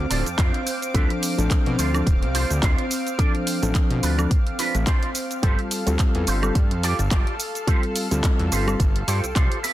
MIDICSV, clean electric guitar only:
0, 0, Header, 1, 3, 480
1, 0, Start_track
1, 0, Tempo, 560748
1, 810, Time_signature, 4, 2, 24, 8
1, 8329, End_track
2, 0, Start_track
2, 0, Title_t, "Clean electric guitar"
2, 0, Program_c, 0, 27
2, 83, Note_on_c, 0, 81, 78
2, 88, Note_on_c, 0, 69, 98
2, 90, Note_on_c, 0, 65, 94
2, 90, Note_on_c, 0, 74, 125
2, 91, Note_on_c, 0, 62, 97
2, 221, Note_off_c, 0, 62, 0
2, 222, Note_off_c, 0, 65, 0
2, 223, Note_off_c, 0, 69, 0
2, 224, Note_off_c, 0, 74, 0
2, 311, Note_off_c, 0, 81, 0
2, 321, Note_on_c, 0, 62, 91
2, 326, Note_on_c, 0, 69, 88
2, 327, Note_on_c, 0, 65, 77
2, 331, Note_on_c, 0, 72, 87
2, 331, Note_on_c, 0, 77, 69
2, 514, Note_off_c, 0, 62, 0
2, 515, Note_off_c, 0, 65, 0
2, 516, Note_off_c, 0, 69, 0
2, 516, Note_off_c, 0, 72, 0
2, 551, Note_off_c, 0, 77, 0
2, 568, Note_on_c, 0, 72, 74
2, 694, Note_off_c, 0, 72, 0
2, 805, Note_on_c, 0, 62, 106
2, 808, Note_on_c, 0, 69, 107
2, 809, Note_on_c, 0, 65, 91
2, 812, Note_on_c, 0, 71, 110
2, 942, Note_off_c, 0, 62, 0
2, 943, Note_off_c, 0, 65, 0
2, 944, Note_off_c, 0, 69, 0
2, 944, Note_off_c, 0, 71, 0
2, 1524, Note_on_c, 0, 69, 77
2, 1527, Note_on_c, 0, 65, 74
2, 1529, Note_on_c, 0, 72, 95
2, 1532, Note_on_c, 0, 62, 78
2, 1767, Note_off_c, 0, 62, 0
2, 1768, Note_off_c, 0, 65, 0
2, 1769, Note_off_c, 0, 69, 0
2, 1770, Note_off_c, 0, 72, 0
2, 2005, Note_on_c, 0, 69, 107
2, 2007, Note_on_c, 0, 65, 100
2, 2009, Note_on_c, 0, 62, 104
2, 2009, Note_on_c, 0, 72, 126
2, 2141, Note_off_c, 0, 62, 0
2, 2142, Note_off_c, 0, 65, 0
2, 2143, Note_off_c, 0, 69, 0
2, 2144, Note_off_c, 0, 72, 0
2, 2242, Note_on_c, 0, 62, 85
2, 2247, Note_on_c, 0, 65, 75
2, 2249, Note_on_c, 0, 72, 99
2, 2253, Note_on_c, 0, 69, 67
2, 2434, Note_off_c, 0, 62, 0
2, 2435, Note_off_c, 0, 65, 0
2, 2436, Note_off_c, 0, 69, 0
2, 2436, Note_off_c, 0, 72, 0
2, 2722, Note_on_c, 0, 62, 111
2, 2727, Note_on_c, 0, 65, 85
2, 2729, Note_on_c, 0, 74, 118
2, 2731, Note_on_c, 0, 69, 92
2, 2861, Note_off_c, 0, 62, 0
2, 2862, Note_off_c, 0, 65, 0
2, 2863, Note_off_c, 0, 69, 0
2, 2864, Note_off_c, 0, 74, 0
2, 3445, Note_on_c, 0, 69, 80
2, 3447, Note_on_c, 0, 65, 77
2, 3449, Note_on_c, 0, 71, 94
2, 3450, Note_on_c, 0, 62, 77
2, 3687, Note_off_c, 0, 62, 0
2, 3688, Note_off_c, 0, 65, 0
2, 3689, Note_off_c, 0, 69, 0
2, 3690, Note_off_c, 0, 71, 0
2, 3926, Note_on_c, 0, 69, 93
2, 3928, Note_on_c, 0, 65, 91
2, 3929, Note_on_c, 0, 71, 120
2, 3930, Note_on_c, 0, 62, 105
2, 4062, Note_off_c, 0, 62, 0
2, 4062, Note_off_c, 0, 65, 0
2, 4063, Note_off_c, 0, 69, 0
2, 4064, Note_off_c, 0, 71, 0
2, 4165, Note_on_c, 0, 62, 84
2, 4169, Note_on_c, 0, 65, 80
2, 4172, Note_on_c, 0, 72, 96
2, 4177, Note_on_c, 0, 69, 74
2, 4355, Note_off_c, 0, 62, 0
2, 4356, Note_off_c, 0, 65, 0
2, 4357, Note_off_c, 0, 69, 0
2, 4358, Note_off_c, 0, 72, 0
2, 4644, Note_on_c, 0, 65, 111
2, 4649, Note_on_c, 0, 67, 94
2, 4651, Note_on_c, 0, 72, 121
2, 4655, Note_on_c, 0, 69, 93
2, 4782, Note_off_c, 0, 65, 0
2, 4783, Note_off_c, 0, 67, 0
2, 4784, Note_off_c, 0, 69, 0
2, 4785, Note_off_c, 0, 72, 0
2, 5369, Note_on_c, 0, 69, 76
2, 5371, Note_on_c, 0, 67, 71
2, 5372, Note_on_c, 0, 72, 93
2, 5374, Note_on_c, 0, 65, 76
2, 5609, Note_off_c, 0, 65, 0
2, 5610, Note_off_c, 0, 67, 0
2, 5611, Note_off_c, 0, 69, 0
2, 5611, Note_off_c, 0, 72, 0
2, 5848, Note_on_c, 0, 69, 109
2, 5850, Note_on_c, 0, 67, 109
2, 5851, Note_on_c, 0, 65, 96
2, 5852, Note_on_c, 0, 74, 125
2, 5983, Note_off_c, 0, 65, 0
2, 5984, Note_off_c, 0, 67, 0
2, 5984, Note_off_c, 0, 69, 0
2, 5985, Note_off_c, 0, 74, 0
2, 6087, Note_on_c, 0, 65, 94
2, 6092, Note_on_c, 0, 67, 76
2, 6093, Note_on_c, 0, 74, 96
2, 6098, Note_on_c, 0, 69, 69
2, 6277, Note_off_c, 0, 65, 0
2, 6277, Note_off_c, 0, 67, 0
2, 6278, Note_off_c, 0, 69, 0
2, 6279, Note_off_c, 0, 74, 0
2, 6565, Note_on_c, 0, 65, 108
2, 6569, Note_on_c, 0, 69, 106
2, 6571, Note_on_c, 0, 67, 91
2, 6574, Note_on_c, 0, 72, 111
2, 6703, Note_off_c, 0, 65, 0
2, 6704, Note_off_c, 0, 67, 0
2, 6704, Note_off_c, 0, 69, 0
2, 6705, Note_off_c, 0, 72, 0
2, 7287, Note_on_c, 0, 69, 76
2, 7290, Note_on_c, 0, 67, 74
2, 7292, Note_on_c, 0, 72, 96
2, 7294, Note_on_c, 0, 65, 81
2, 7529, Note_off_c, 0, 65, 0
2, 7530, Note_off_c, 0, 67, 0
2, 7531, Note_off_c, 0, 69, 0
2, 7531, Note_off_c, 0, 72, 0
2, 7767, Note_on_c, 0, 69, 104
2, 7770, Note_on_c, 0, 79, 74
2, 7771, Note_on_c, 0, 72, 125
2, 7774, Note_on_c, 0, 67, 96
2, 7776, Note_on_c, 0, 65, 92
2, 7903, Note_off_c, 0, 65, 0
2, 7904, Note_off_c, 0, 67, 0
2, 7904, Note_off_c, 0, 69, 0
2, 7905, Note_off_c, 0, 72, 0
2, 7993, Note_off_c, 0, 79, 0
2, 8003, Note_on_c, 0, 65, 91
2, 8011, Note_on_c, 0, 67, 81
2, 8011, Note_on_c, 0, 72, 98
2, 8013, Note_on_c, 0, 69, 72
2, 8014, Note_on_c, 0, 77, 76
2, 8195, Note_off_c, 0, 65, 0
2, 8196, Note_off_c, 0, 67, 0
2, 8197, Note_off_c, 0, 69, 0
2, 8198, Note_off_c, 0, 72, 0
2, 8232, Note_off_c, 0, 77, 0
2, 8244, Note_on_c, 0, 76, 80
2, 8249, Note_on_c, 0, 69, 81
2, 8250, Note_on_c, 0, 67, 80
2, 8250, Note_on_c, 0, 71, 104
2, 8254, Note_on_c, 0, 60, 83
2, 8329, Note_off_c, 0, 60, 0
2, 8329, Note_off_c, 0, 67, 0
2, 8329, Note_off_c, 0, 69, 0
2, 8329, Note_off_c, 0, 71, 0
2, 8329, Note_off_c, 0, 76, 0
2, 8329, End_track
3, 0, Start_track
3, 0, Title_t, "Muted clean electric guitar strokes"
3, 699, Note_on_c, 9, 29, 34
3, 785, Note_off_c, 9, 29, 0
3, 1046, Note_on_c, 9, 29, 34
3, 1132, Note_off_c, 9, 29, 0
3, 1178, Note_on_c, 9, 29, 89
3, 1264, Note_off_c, 9, 29, 0
3, 1420, Note_on_c, 9, 29, 34
3, 1505, Note_off_c, 9, 29, 0
3, 2619, Note_on_c, 9, 29, 33
3, 2705, Note_off_c, 9, 29, 0
3, 2965, Note_on_c, 9, 29, 33
3, 3051, Note_off_c, 9, 29, 0
3, 3101, Note_on_c, 9, 29, 87
3, 3187, Note_off_c, 9, 29, 0
3, 3340, Note_on_c, 9, 29, 32
3, 3426, Note_off_c, 9, 29, 0
3, 4540, Note_on_c, 9, 29, 33
3, 4625, Note_off_c, 9, 29, 0
3, 4887, Note_on_c, 9, 29, 32
3, 4973, Note_off_c, 9, 29, 0
3, 5021, Note_on_c, 9, 29, 89
3, 5106, Note_off_c, 9, 29, 0
3, 5126, Note_on_c, 9, 29, 34
3, 5211, Note_off_c, 9, 29, 0
3, 5262, Note_on_c, 9, 29, 33
3, 5348, Note_off_c, 9, 29, 0
3, 6464, Note_on_c, 9, 29, 33
3, 6549, Note_off_c, 9, 29, 0
3, 6808, Note_on_c, 9, 29, 35
3, 6894, Note_off_c, 9, 29, 0
3, 6941, Note_on_c, 9, 29, 90
3, 7027, Note_off_c, 9, 29, 0
3, 7181, Note_on_c, 9, 29, 34
3, 7267, Note_off_c, 9, 29, 0
3, 8329, End_track
0, 0, End_of_file